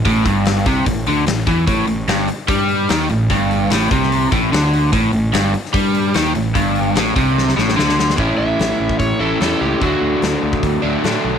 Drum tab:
HH |o-o-o-o-o-o-o-o-|o-o-o-o-o-o-o-o-|o-o-o-o-o-o-o-o-|o-o-o-o-o-o-o-o-|
SD |----o-------o---|----o-------o---|----o--o----o---|----o--o----o---|
BD |o-o---o-o-----o-|o-------o-------|o-----o---o-----|o-------o-------|

HH |o-o-o-o---------|o---o---o---o---|o---o---o---o---|
SD |----o---oooooooo|----o-------o---|----o-------o---|
BD |o-----o---------|o------oo-------|o------oo-------|